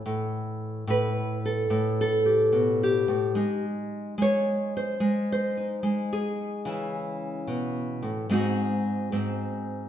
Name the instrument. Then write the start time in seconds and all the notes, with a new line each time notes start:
nylon-string guitar
Already playing: E3
0.06 A2
0.87 A2 B4
1.45 A4
1.70 A2
2.01 A4
2.25 G4
2.52 B2
2.83 G4
3.08 A2
3.35 G#3 D#4
4.18 G#3
4.22 C#5
4.77 C5
5.00 G#3
5.32 C5
5.57 D#4
5.83 G#3
6.13 G#4
6.65 C#3 E3 E4
7.47 B2
8.02 A2
8.30 G#2 G#3 C4 D#4 F#4
9.12 G#2 C4